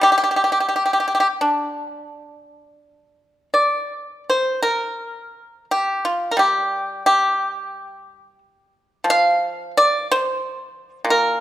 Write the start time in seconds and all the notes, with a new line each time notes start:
0.01 G3 G4
0.12 G4
0.18 G4
0.24 G4
0.31 G4
0.36 G4
0.44 G4
0.52 G4
0.60 G4
0.69 G4
0.76 G4
0.86 G4
0.93 G4
1.00 G4
1.08 G4
1.15 G4
1.20 G4
1.41 D4
3.54 D5
4.30 C5
4.63 A#4
5.71 G4
6.05 F4
6.31 A#4
6.37 G3 G4
7.06 G4
9.04 F3
9.10 F5
9.77 D5
10.12 C5
11.05 A#2
11.10 A#4